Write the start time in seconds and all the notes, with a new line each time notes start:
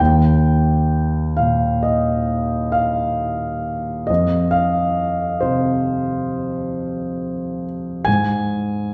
Already playing: G5
0.00 D#2
1.37 A#2 F5
1.83 D#5
2.72 F5
4.07 F2 D#5
4.51 F5
5.41 C3 C5
8.05 G#2 G#5